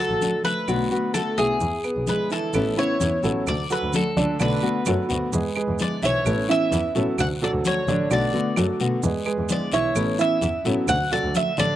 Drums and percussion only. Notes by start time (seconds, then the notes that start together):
0.21 high conga, short guiro, maracas
0.44 high conga, short guiro, maracas
0.68 high conga, long guiro, claves, maracas
0.91 high conga, maracas
1.14 high conga, short guiro, claves, maracas
1.38 high conga, short guiro, maracas
1.60 high conga, long guiro, maracas
1.84 high conga, claves, maracas
2.07 high conga, short guiro, maracas
2.30 short guiro, maracas
2.53 high conga, long guiro, claves, maracas
2.78 high conga
3.01 high conga, short guiro, maracas
3.23 short guiro, maracas
3.47 high conga, low conga, long guiro, claves, maracas
3.70 high conga, maracas
3.93 high conga, short guiro, maracas
4.17 high conga, short guiro, maracas
4.40 high conga, long guiro, claves, maracas
4.64 high conga
4.86 high conga, short guiro, claves, maracas
5.10 high conga, short guiro, maracas
5.33 high conga, long guiro, maracas
5.56 high conga, claves
5.79 high conga, short guiro, maracas
6.02 high conga, short guiro, maracas
6.26 long guiro, claves, maracas
6.50 high conga
6.72 high conga, short guiro, maracas
6.95 short guiro, maracas
7.18 high conga, low conga, long guiro, claves, maracas
7.42 high conga, low conga
7.64 high conga, short guiro, maracas
7.87 high conga, short guiro, maracas
8.11 high conga, long guiro, claves, maracas
8.34 high conga
8.56 high conga, short guiro, claves, maracas
8.80 high conga, short guiro, maracas
9.02 long guiro, maracas
9.26 high conga, claves
9.49 high conga, short guiro, maracas
9.72 high conga, short guiro, maracas
9.96 long guiro, claves, maracas
10.19 high conga, maracas
10.41 high conga, short guiro, maracas
10.65 short guiro, maracas
10.88 high conga, low conga, long guiro, claves, maracas
11.12 high conga, low conga
11.35 high conga, short guiro, maracas
11.57 high conga, short guiro, maracas